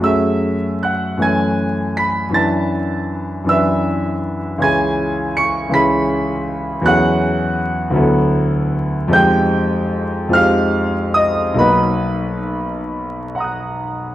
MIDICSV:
0, 0, Header, 1, 2, 480
1, 0, Start_track
1, 0, Tempo, 791557
1, 25, Time_signature, 6, 3, 24, 8
1, 985, Tempo, 758534
1, 1945, Tempo, 743494
1, 5305, Tempo, 802139
1, 6745, Tempo, 860832
1, 8639, End_track
2, 0, Start_track
2, 0, Title_t, "Grand piano"
2, 0, Program_c, 0, 0
2, 0, Control_c, 0, 64, 127
2, 0, Note_on_c, 0, 42, 48
2, 3, Note_on_c, 0, 54, 40
2, 9, Note_on_c, 0, 57, 42
2, 17, Note_on_c, 0, 61, 40
2, 22, Note_on_c, 0, 88, 96
2, 28, Note_on_c, 0, 68, 43
2, 30, Note_on_c, 0, 76, 76
2, 35, Control_c, 0, 64, 0
2, 149, Control_c, 0, 64, 127
2, 489, Note_off_c, 0, 76, 0
2, 501, Note_on_c, 0, 90, 72
2, 507, Note_on_c, 0, 78, 52
2, 509, Note_off_c, 0, 88, 0
2, 701, Note_off_c, 0, 42, 0
2, 711, Note_on_c, 0, 42, 50
2, 715, Note_off_c, 0, 57, 0
2, 718, Note_off_c, 0, 54, 0
2, 720, Note_on_c, 0, 52, 42
2, 723, Note_off_c, 0, 61, 0
2, 724, Note_on_c, 0, 57, 42
2, 731, Note_off_c, 0, 68, 0
2, 732, Note_on_c, 0, 61, 40
2, 733, Note_off_c, 0, 78, 0
2, 740, Note_on_c, 0, 92, 89
2, 742, Note_on_c, 0, 80, 69
2, 743, Note_on_c, 0, 69, 40
2, 746, Note_off_c, 0, 90, 0
2, 760, Control_c, 0, 64, 0
2, 862, Control_c, 0, 64, 127
2, 1194, Note_off_c, 0, 80, 0
2, 1203, Note_on_c, 0, 95, 103
2, 1215, Note_on_c, 0, 83, 72
2, 1218, Note_off_c, 0, 92, 0
2, 1398, Note_off_c, 0, 42, 0
2, 1408, Note_on_c, 0, 42, 52
2, 1410, Note_off_c, 0, 52, 0
2, 1419, Note_on_c, 0, 52, 45
2, 1427, Note_off_c, 0, 57, 0
2, 1429, Note_on_c, 0, 62, 43
2, 1431, Note_off_c, 0, 61, 0
2, 1437, Note_off_c, 0, 69, 0
2, 1440, Note_on_c, 0, 64, 43
2, 1441, Note_on_c, 0, 93, 86
2, 1442, Note_off_c, 0, 83, 0
2, 1448, Note_on_c, 0, 71, 44
2, 1449, Note_on_c, 0, 81, 62
2, 1453, Note_off_c, 0, 95, 0
2, 1475, Control_c, 0, 64, 0
2, 1589, Control_c, 0, 64, 127
2, 2131, Note_off_c, 0, 42, 0
2, 2140, Note_on_c, 0, 42, 52
2, 2142, Note_off_c, 0, 52, 0
2, 2149, Note_off_c, 0, 62, 0
2, 2152, Note_on_c, 0, 52, 45
2, 2156, Note_off_c, 0, 64, 0
2, 2157, Note_off_c, 0, 81, 0
2, 2159, Note_on_c, 0, 62, 44
2, 2160, Note_off_c, 0, 71, 0
2, 2169, Note_on_c, 0, 64, 41
2, 2172, Note_on_c, 0, 88, 98
2, 2178, Note_on_c, 0, 71, 44
2, 2179, Note_off_c, 0, 93, 0
2, 2186, Note_on_c, 0, 76, 75
2, 2863, Note_off_c, 0, 42, 0
2, 2869, Note_off_c, 0, 52, 0
2, 2873, Note_off_c, 0, 62, 0
2, 2873, Note_on_c, 0, 37, 58
2, 2878, Note_off_c, 0, 64, 0
2, 2879, Note_on_c, 0, 52, 48
2, 2883, Note_off_c, 0, 71, 0
2, 2883, Note_off_c, 0, 76, 0
2, 2886, Note_on_c, 0, 61, 47
2, 2893, Note_on_c, 0, 64, 47
2, 2900, Note_on_c, 0, 92, 108
2, 2901, Note_off_c, 0, 88, 0
2, 2906, Note_on_c, 0, 68, 47
2, 2909, Note_on_c, 0, 80, 84
2, 2922, Control_c, 0, 64, 0
2, 3009, Control_c, 0, 64, 127
2, 3367, Note_off_c, 0, 80, 0
2, 3383, Note_on_c, 0, 97, 107
2, 3388, Note_off_c, 0, 92, 0
2, 3390, Note_on_c, 0, 85, 84
2, 3580, Note_off_c, 0, 37, 0
2, 3585, Note_off_c, 0, 52, 0
2, 3590, Note_on_c, 0, 37, 58
2, 3595, Note_on_c, 0, 52, 46
2, 3596, Note_off_c, 0, 61, 0
2, 3602, Note_off_c, 0, 64, 0
2, 3606, Note_on_c, 0, 61, 48
2, 3609, Note_off_c, 0, 68, 0
2, 3614, Note_off_c, 0, 85, 0
2, 3616, Note_on_c, 0, 64, 49
2, 3621, Note_on_c, 0, 95, 113
2, 3626, Note_on_c, 0, 68, 49
2, 3627, Note_on_c, 0, 83, 91
2, 3628, Note_off_c, 0, 97, 0
2, 4311, Note_off_c, 0, 37, 0
2, 4314, Note_off_c, 0, 52, 0
2, 4317, Note_on_c, 0, 40, 61
2, 4319, Note_off_c, 0, 61, 0
2, 4324, Note_off_c, 0, 64, 0
2, 4325, Note_on_c, 0, 54, 52
2, 4326, Note_off_c, 0, 83, 0
2, 4330, Note_off_c, 0, 68, 0
2, 4331, Note_on_c, 0, 61, 55
2, 4340, Note_on_c, 0, 64, 52
2, 4343, Note_on_c, 0, 90, 121
2, 4349, Note_off_c, 0, 95, 0
2, 4349, Note_on_c, 0, 68, 51
2, 4351, Note_on_c, 0, 78, 90
2, 4365, Control_c, 0, 64, 0
2, 4472, Control_c, 0, 64, 127
2, 5020, Note_off_c, 0, 40, 0
2, 5020, Note_off_c, 0, 54, 0
2, 5020, Note_on_c, 0, 38, 65
2, 5027, Note_off_c, 0, 61, 0
2, 5030, Note_on_c, 0, 54, 57
2, 5031, Note_off_c, 0, 64, 0
2, 5036, Note_off_c, 0, 68, 0
2, 5039, Note_on_c, 0, 59, 54
2, 5048, Note_on_c, 0, 64, 53
2, 5057, Note_on_c, 0, 69, 54
2, 5070, Control_c, 0, 64, 0
2, 5167, Control_c, 0, 64, 127
2, 5742, Note_off_c, 0, 38, 0
2, 5742, Note_on_c, 0, 41, 65
2, 5746, Note_off_c, 0, 54, 0
2, 5751, Note_off_c, 0, 59, 0
2, 5752, Note_on_c, 0, 53, 54
2, 5755, Note_off_c, 0, 64, 0
2, 5756, Note_off_c, 0, 78, 0
2, 5759, Note_off_c, 0, 69, 0
2, 5763, Note_on_c, 0, 56, 58
2, 5767, Note_on_c, 0, 63, 53
2, 5773, Note_on_c, 0, 91, 124
2, 5774, Note_on_c, 0, 67, 55
2, 5777, Note_off_c, 0, 90, 0
2, 5783, Note_on_c, 0, 79, 91
2, 5794, Control_c, 0, 64, 0
2, 5889, Control_c, 0, 64, 127
2, 6457, Note_off_c, 0, 41, 0
2, 6463, Note_off_c, 0, 53, 0
2, 6466, Note_on_c, 0, 41, 65
2, 6469, Note_off_c, 0, 56, 0
2, 6471, Note_off_c, 0, 63, 0
2, 6473, Note_on_c, 0, 53, 55
2, 6475, Note_off_c, 0, 67, 0
2, 6477, Note_off_c, 0, 79, 0
2, 6482, Note_on_c, 0, 56, 52
2, 6491, Note_on_c, 0, 63, 51
2, 6493, Note_on_c, 0, 89, 118
2, 6496, Note_off_c, 0, 91, 0
2, 6498, Note_on_c, 0, 67, 55
2, 6504, Note_on_c, 0, 77, 86
2, 6958, Note_off_c, 0, 77, 0
2, 6964, Note_on_c, 0, 87, 104
2, 6974, Note_on_c, 0, 75, 79
2, 6975, Note_off_c, 0, 89, 0
2, 7180, Note_off_c, 0, 41, 0
2, 7184, Note_off_c, 0, 53, 0
2, 7184, Note_on_c, 0, 35, 59
2, 7188, Note_off_c, 0, 56, 0
2, 7191, Note_on_c, 0, 54, 50
2, 7192, Note_off_c, 0, 63, 0
2, 7195, Note_off_c, 0, 67, 0
2, 7198, Note_off_c, 0, 75, 0
2, 7200, Note_on_c, 0, 58, 46
2, 7209, Note_on_c, 0, 63, 48
2, 7210, Note_off_c, 0, 87, 0
2, 7211, Note_on_c, 0, 83, 95
2, 7217, Note_on_c, 0, 66, 47
2, 7218, Note_on_c, 0, 71, 71
2, 7228, Control_c, 0, 64, 0
2, 7326, Control_c, 0, 64, 127
2, 7916, Note_off_c, 0, 71, 0
2, 7935, Note_off_c, 0, 83, 0
2, 8194, Note_on_c, 0, 78, 41
2, 8209, Note_on_c, 0, 82, 43
2, 8224, Note_on_c, 0, 87, 42
2, 8243, Note_on_c, 0, 90, 42
2, 8624, Note_off_c, 0, 35, 0
2, 8627, Note_off_c, 0, 54, 0
2, 8632, Note_off_c, 0, 58, 0
2, 8636, Note_off_c, 0, 63, 0
2, 8639, Note_off_c, 0, 66, 0
2, 8639, Note_off_c, 0, 78, 0
2, 8639, Note_off_c, 0, 82, 0
2, 8639, Note_off_c, 0, 87, 0
2, 8639, Note_off_c, 0, 90, 0
2, 8639, End_track
0, 0, End_of_file